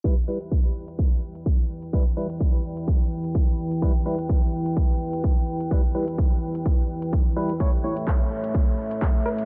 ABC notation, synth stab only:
X:1
M:4/4
L:1/8
Q:"Swing 16ths" 1/4=127
K:Edor
V:1 name="Synth stab"
[G,EB] [G,EB] z6 | [G,EB] [G,EB] z6 | [G,EB] [G,EB] z6 | [G,EB] [G,EB] z4 z [G,EB] |
[A,Ec] [A,Ec] z6 |]